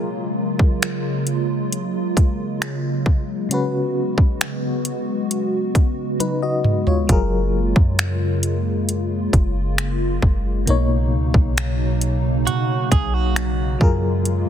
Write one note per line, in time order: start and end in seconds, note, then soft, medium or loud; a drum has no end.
0.00 7.05 C#3 medium
0.00 3.01 F#3 medium
0.00 10.64 F#3 medium
0.00 10.64 G#3 medium
0.00 3.47 A#3 medium
0.00 3.02 F4 medium
0.00 3.47 F4 medium
0.00 3.03 G#4 medium
0.00 3.04 A#4 medium
0.59 kick medium
0.82 finger snap loud
0.82 closed hi-hat medium
1.27 closed hi-hat medium
1.72 closed hi-hat medium
2.17 kick medium
2.17 closed hi-hat medium
2.62 finger snap loud
2.62 closed hi-hat medium
3.06 kick medium
3.49 7.04 C#3 medium
3.49 7.06 B3 medium
3.49 7.05 C#4 medium
3.49 7.06 F#4 medium
3.49 6.16 F#4 medium
3.49 closed hi-hat medium
3.54 6.17 B4 medium
4.18 kick loud
4.41 finger snap loud
4.41 closed hi-hat medium
4.85 closed hi-hat medium
5.31 closed hi-hat medium
5.75 kick medium
5.75 closed hi-hat medium
6.20 6.41 D#4 medium
6.20 6.41 B4 medium
6.20 closed hi-hat medium
6.20 high tom soft
6.42 6.85 F#4 medium
6.42 6.85 D#5 medium
6.64 mid tom medium
6.87 7.08 F4 medium
6.87 7.30 C#5 medium
6.87 floor tom medium
7.07 7.74 F#1 loud
7.07 10.64 C#3 medium
7.07 10.62 F#3 medium
7.07 14.49 A#3 medium
7.07 8.86 F4 medium
7.07 10.63 F4 medium
7.07 10.64 G#4 medium
7.07 kick loud
7.07 closed hi-hat medium
7.12 10.65 A#4 medium
7.76 9.29 F#2 loud
7.76 kick medium
7.99 finger snap loud
7.99 closed hi-hat medium
8.43 closed hi-hat medium
8.88 10.66 F4 medium
8.88 closed hi-hat medium
9.33 10.19 F#1 loud
9.33 kick medium
9.33 closed hi-hat medium
9.78 finger snap medium
9.78 closed hi-hat medium
10.22 10.66 F#1 medium
10.22 kick medium
10.66 11.14 B1 loud
10.66 13.76 B2 medium
10.66 13.78 B2 medium
10.66 14.49 C#3 medium
10.66 14.49 F#3 medium
10.66 13.77 A#3 medium
10.66 13.78 D#4 medium
10.66 closed hi-hat medium
10.70 13.78 C#5 medium
11.13 11.34 C#2 medium
11.34 12.48 B1 loud
11.34 kick medium
11.58 finger snap loud
11.58 closed hi-hat medium
12.01 closed hi-hat medium
12.47 12.89 B2 loud
12.47 12.89 F#4 medium
12.47 closed hi-hat medium
12.92 13.78 B1 loud
12.92 13.14 G#4 medium
12.92 kick medium
12.92 closed hi-hat medium
13.14 13.78 F#4 medium
13.36 finger snap loud
13.36 closed hi-hat medium
13.79 14.45 F#2 medium
13.79 14.49 F#3 medium
13.79 14.49 G#3 medium
13.79 14.49 F4 medium
13.79 14.49 F4 loud
13.79 14.49 G#4 medium
13.79 kick loud
13.83 14.49 A#4 medium
14.25 closed hi-hat medium